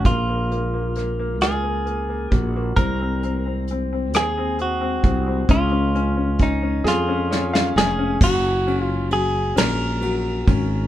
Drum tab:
CC |------------|------------|------------|x-----------|
RD |------------|------------|------------|--x-x-x-x-x-|
HH |x-x-x-x-x-x-|x-x-x-x-x-x-|x-x-x-------|------------|
SD |----r-r-----|------r-----|------o-ooo-|------o-----|
BD |o---------o-|o---------o-|o---o-------|o---------o-|